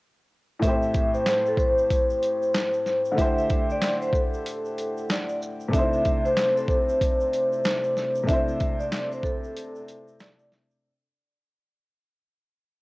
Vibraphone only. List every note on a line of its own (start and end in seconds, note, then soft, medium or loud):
0.62 1.11 E5 loud
1.14 1.25 C5 medium
1.28 1.45 C5 loud
1.48 1.58 A4 medium
1.58 3.14 C5 medium
3.17 3.66 E5 loud
3.72 3.81 D5 medium
3.82 4.00 D5 medium
4.02 4.13 C5 medium
4.12 5.05 A4 medium
5.11 5.39 D5 medium
5.73 6.22 E5 loud
6.25 6.35 C5 medium
6.36 6.55 C5 medium
6.57 6.68 A4 medium
6.68 8.24 C5 medium
8.27 8.77 E5 loud
8.80 8.91 D5 medium
8.94 9.11 D5 medium
9.12 9.23 C5 medium
9.24 10.16 A4 medium
10.21 10.49 D5 medium